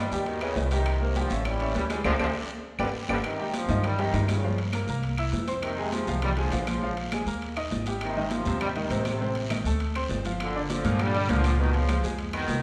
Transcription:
Already playing: trombone section D#3 G3
0.11 upright bass D#2, grand piano G3 G4 G5, high conga, short guiro
0.26 trombone section B2 D#3, high conga, high timbale, long guiro
0.41 trombone section A#2 C#3, grand piano B3 B4 D#5, high conga, high timbale, claves
0.56 upright bass C2, grand piano B3 B4 D#5, high conga, low timbale, short guiro
0.71 trombone section C3 D#3, grand piano G3 G4 G5, high timbale, short guiro
0.86 high conga, high timbale, long guiro, claves
1.01 grand piano A#3 A#4 C5, high conga
1.15 trombone section D3 F3, grand piano G3 G4 G5, high conga, high timbale, low timbale, short guiro
1.30 upright bass A1, grand piano C#4 C#5 E5, high conga, short guiro
1.45 trombone section E3 G3, high conga, high timbale, long guiro, claves
1.60 grand piano C#4 C#5 E5, high conga, high timbale
1.74 upright bass D2, trombone section E3 G3, high conga, high timbale, low timbale, short guiro
1.90 trombone section E3 G3, grand piano G#3 G#4 G#5, high conga, high timbale, short guiro, claves
2.04 upright bass D2, trombone section C3 D3 F3, grand piano G#4 C5 D5, high conga, high timbale, long guiro, claves
2.19 upright bass D2, trombone section C3 D3 F3, grand piano G#4 C5 D5, high conga, high timbale, long guiro, claves
2.79 upright bass G1, trombone section D3 F3 G3, grand piano G4 B4 D5, high conga, high timbale, long guiro, claves
3.09 upright bass G1, trombone section D3 F3 G3, grand piano G4 B4 D5, high conga, high timbale, long guiro, claves
3.24 trombone section C3 D#3, high conga, high timbale, long guiro, claves
3.39 grand piano G3 G4 G5, high conga
3.54 trombone section C3 F3, high conga, high timbale, low timbale, short guiro
3.69 upright bass G2, grand piano D#3 D#4 D#5, high conga, short guiro
3.84 trombone section D#3 G3, high conga, low conga, high timbale, long guiro, claves
3.99 trombone section C3 D#3, grand piano G3 G4 G5, high conga, low conga, high timbale
4.13 upright bass G2, grand piano D#3 D#4 D#5, high conga, high timbale, low timbale, short guiro
4.28 trombone section A#2 C#3, high conga, high timbale, short guiro, claves
4.43 grand piano F3 F4 F5, high conga, long guiro
4.58 high conga, high timbale
4.73 grand piano A#3 A#4 A#5, high conga, high timbale, low timbale, short guiro, claves
4.87 upright bass C2, grand piano A#3 A#4 A#5, high conga, short guiro
5.03 high conga, high timbale, long guiro
5.17 grand piano E4 E5 E6, high conga, high timbale, claves
5.32 upright bass F2, high conga, low timbale, short guiro
5.47 grand piano C4 C5 C6, high timbale, short guiro
5.62 trombone section C3 D#3, high conga, high timbale, long guiro, claves
5.78 grand piano G#3 G#4 G#5
5.92 trombone section C3 F3, high conga, high timbale, low timbale, short guiro
6.07 upright bass C2, grand piano F3 F4 F5, high conga, short guiro
6.22 trombone section D#3 G3, high conga, low conga, high timbale, long guiro, claves
6.37 trombone section D3 F3, grand piano G#3 G#4 G#5, high conga, high timbale
6.51 upright bass A#1, grand piano F3 F4 F5, high conga, high timbale, low timbale, short guiro
6.67 trombone section C#3 F3, high conga, high timbale, short guiro, claves
6.82 grand piano F3 F4 F5, high conga, long guiro
6.97 high conga, high timbale
7.12 grand piano G#3 G#4 G#5, high conga, high timbale, low timbale, short guiro, claves
7.26 upright bass D#2, grand piano A#3 A#4 A#5, high conga, short guiro
7.41 high conga, high timbale, long guiro
7.57 grand piano D#4 D#5 D#6, high conga, high timbale, claves
7.71 upright bass G#1, high conga, low timbale, short guiro
7.86 grand piano G3 G4 G5, high conga, high timbale, short guiro
8.01 trombone section C3 D#3, high conga, high timbale, long guiro, claves
8.16 grand piano D#3 D#4 D#5, high conga
8.31 trombone section C3 F3, high conga, high timbale, low timbale, short guiro
8.45 upright bass D#2, grand piano C3 C4 C5, high conga, short guiro
8.60 trombone section D#3 G3, high conga, low conga, high timbale, long guiro, claves
8.76 trombone section C3 D#3, grand piano D#3 D#4 D#5, high conga, high timbale
8.90 upright bass A1, grand piano C3 C4 C5, high conga, high timbale, low timbale, short guiro
9.05 trombone section A2 C3, high conga, high timbale, short guiro, claves
9.20 grand piano C3 C4 C5, high conga, long guiro
9.35 high conga, high timbale
9.50 grand piano D#3 D#4 D#5, high conga, high timbale, low timbale, short guiro, claves
9.64 upright bass D2, grand piano A3 A4 A5, high conga, short guiro
9.80 high conga, high timbale, long guiro
9.95 grand piano C4 C5 C6, high conga, high timbale, claves
10.09 upright bass G1, high conga, low timbale, short guiro
10.25 grand piano F3 F4 F5, high timbale, short guiro
10.40 trombone section A#2 D3, high conga, high timbale, long guiro, claves
10.55 grand piano D3 D4 D5, high conga
10.70 trombone section D3 F3, high conga, high timbale, low timbale, short guiro
10.84 upright bass G2, grand piano A#2 A#3 A#4, high conga, short guiro
10.99 trombone section D3 G3, high conga, low conga, high timbale, long guiro, claves
11.14 grand piano D3 D4 D5, high conga, high timbale
11.29 upright bass C#2, grand piano A#2 A#3 A#4, trombone section D3 F3, high conga, high timbale, low timbale, short guiro
11.44 high conga, high timbale, short guiro, claves
11.59 grand piano B2 B3 B4, trombone section B2 D#3, high conga, long guiro
11.74 trombone section C#3 F3, high conga, high timbale
11.89 grand piano F3 F4 F5, high conga, high timbale, low timbale, short guiro, claves
12.03 upright bass F2, grand piano G#3 G#4 G#5, high conga, short guiro
12.19 high conga, high timbale, long guiro
12.33 trombone section B2 D#3, grand piano B3 B4 B5, high conga, high timbale, claves
12.47 upright bass C2, high conga, low timbale, short guiro

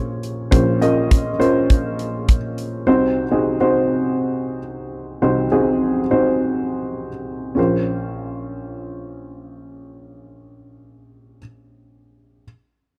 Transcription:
Already playing: upright piano A#1 A#2 C#4 F4 A#4 C5 C#5
0.23 closed hi-hat
0.51 upright piano A#1 A#2 C#4 F4 A#4 C5, kick, closed hi-hat
0.81 upright piano C#4 F4 A#4 D#5, closed hi-hat
1.11 kick, closed hi-hat
1.39 upright piano C#4 F4 A#4 C5, closed hi-hat
1.70 kick, closed hi-hat
1.99 closed hi-hat
2.28 kick, closed hi-hat
2.58 closed hi-hat
2.87 upright piano C2 C3 C4 D#4 F#4 C5
3.31 upright piano C4 D#4 F#4 G#4
3.60 upright piano C4 D#4 F#4 C5
5.22 upright piano C2 C3 C4 D#4 F#4 C5
5.52 upright piano C4 D#4 F#4 G#4
6.11 upright piano C4 D#4 F#4 C5
7.55 upright piano A#1 C#4 F4 A#4 C5

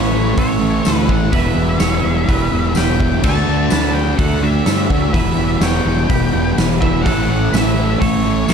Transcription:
Already playing: fingered electric bass A1, overdriven electric guitar A2 E3 A3 C#4 E4, clean electric guitar B4, lead electric guitar C#5
0.11 overdriven electric guitar A2 E3 A3
0.34 fingered electric bass A1, overdriven electric guitar A2 E3 A3, clean electric guitar A4, kick, open hi-hat
0.39 distorted electric guitar A3, lead electric guitar C#5
0.58 overdriven electric guitar A2 E3 A3
0.82 overdriven electric guitar A2 E3 A3, clean electric guitar A4, open hi-hat, tambourine
0.87 fingered electric bass D2, distorted electric guitar A3, snare
0.93 lead electric guitar B4
1.06 fingered electric bass A1, overdriven electric guitar A2 E3 A3 C#4 E4, lead electric guitar F#5, kick
1.11 overdriven electric guitar A2
1.31 fingered electric bass E1, overdriven electric guitar E2 B2 E3 G3 B3 E4, clean electric guitar B4, lead electric guitar E5, kick, open hi-hat
1.54 fingered electric bass E1, overdriven electric guitar E2 B2 E3
1.79 fingered electric bass E1, overdriven electric guitar E2 B2 E3, clean electric guitar C#5, snare, open hi-hat, tambourine
2.00 overdriven electric guitar E2 B2 E3
2.05 fingered electric bass E1
2.24 overdriven electric guitar E2 B2 E3, clean electric guitar B4
2.29 fingered electric bass E1, kick, open hi-hat
2.51 fingered electric bass E1, overdriven electric guitar E2 B2 E3
2.73 overdriven electric guitar E2 B2 E3, clean electric guitar B4, lead electric guitar G5, tambourine
2.77 fingered electric bass E1, snare, open hi-hat
2.97 overdriven electric guitar E2 B2 E3 B3 E4, kick
3.01 overdriven electric guitar E2 B2 E3 G3
3.22 fingered electric bass D2, overdriven electric guitar D3 A3 D4, clean electric guitar A4, lead electric guitar A5, kick, crash
3.26 overdriven electric guitar D4 F#4
3.45 fingered electric bass D2, overdriven electric guitar D3 A3 D4
3.68 fingered electric bass D2, overdriven electric guitar D3 A3 D4, clean electric guitar B4, lead electric guitar A5, snare, open hi-hat, tambourine
3.92 overdriven electric guitar D3 A3 D4, lead electric guitar G5
4.16 fingered electric bass D2, overdriven electric guitar D3 A3 D4, clean electric guitar A4, lead electric guitar F#5, kick, open hi-hat
4.42 overdriven electric guitar D3 A3 D4, lead electric guitar E5
4.65 fingered electric bass G2, overdriven electric guitar D3 A3 D4, clean electric guitar A4, snare, open hi-hat, tambourine
4.89 fingered electric bass D2, overdriven electric guitar D3 A3 D4 F#4, kick
5.11 fingered electric bass E1, overdriven electric guitar E2 B2 E3 G3 B3, clean electric guitar B4, lead electric guitar E5, kick, open hi-hat
5.16 overdriven electric guitar E4
5.35 fingered electric bass E1, overdriven electric guitar E2 B2 E3
5.61 fingered electric bass E1, overdriven electric guitar E2 B2 E3, clean electric guitar C#5, lead electric guitar G5, snare, open hi-hat, tambourine
5.83 fingered electric bass E1, overdriven electric guitar E2 B2 E3
6.09 fingered electric bass E1, overdriven electric guitar E2 B2 E3, clean electric guitar B4, kick, open hi-hat
6.32 fingered electric bass E1, overdriven electric guitar E2 B2 E3
6.55 fingered electric bass E1, overdriven electric guitar E2 B2 E3, clean electric guitar B4, snare, open hi-hat, tambourine
6.79 overdriven electric guitar E2 B2 E3 G3 B3 E4, lead electric guitar E5, kick
6.84 overdriven electric guitar E2 B2 E3
7.02 fingered electric bass A1, overdriven electric guitar A2 E3, clean electric guitar A4, lead electric guitar F#5
7.06 overdriven electric guitar A2 E3 A3 C#4 E4, kick, open hi-hat
7.29 fingered electric bass A1, overdriven electric guitar A2 E3 A3, lead electric guitar F#5
7.52 fingered electric bass A1, overdriven electric guitar A2 E3 A3, clean electric guitar B4, lead electric guitar E5, snare, open hi-hat, tambourine
7.76 overdriven electric guitar A2 E3 A3
7.99 fingered electric bass A1, overdriven electric guitar A2 E3 A3, clean electric guitar A4, lead electric guitar C#5, kick, open hi-hat
8.25 overdriven electric guitar A2 E3 A3
8.48 fingered electric bass D2, overdriven electric guitar A2 E3 A3, clean electric guitar A4, snare, open hi-hat, tambourine

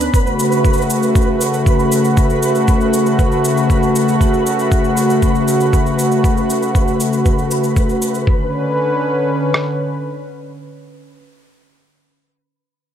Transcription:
Already playing: synth texture B4 B5
0.01 closed hi-hat, cabasa
0.14 analog synth pad C#3 A3 F#4, kick, cabasa
0.27 cabasa
0.39 cabasa
0.52 cabasa
0.65 kick, cabasa
0.73 cabasa
0.77 cabasa
0.82 cabasa
0.90 cabasa
1.03 cabasa
1.15 kick, cabasa
1.22 cabasa
1.41 cabasa
1.54 cabasa
1.66 kick, cabasa
1.79 cabasa
1.92 cabasa
2.05 cabasa
2.17 kick, cabasa
2.30 cabasa
2.43 cabasa
2.55 cabasa
2.68 kick, cabasa
2.81 cabasa
2.94 cabasa
3.06 cabasa
3.19 kick, cabasa
3.32 cabasa
3.45 cabasa
3.57 cabasa
3.70 kick, cabasa
3.83 cabasa
3.96 cabasa
4.08 cabasa
4.21 kick, cabasa
4.34 cabasa
4.47 cabasa
4.59 cabasa
4.72 kick, cabasa
4.84 cabasa
4.97 cabasa
5.10 cabasa
5.22 kick, cabasa
5.35 cabasa
5.48 cabasa
5.61 cabasa
5.73 kick, cabasa
5.86 cabasa
5.99 cabasa
6.12 cabasa
6.24 kick, cabasa
6.37 cabasa
6.50 cabasa
6.63 cabasa
6.75 kick, cabasa
6.88 cabasa
7.00 cabasa
7.13 cabasa
7.26 kick, cabasa
7.39 cabasa
7.51 cabasa
7.64 cabasa
7.76 kick, cabasa
7.89 cabasa
8.02 cabasa
8.15 cabasa
8.26 analog synth pad D3 C#4 B4, kick
9.54 cross-stick

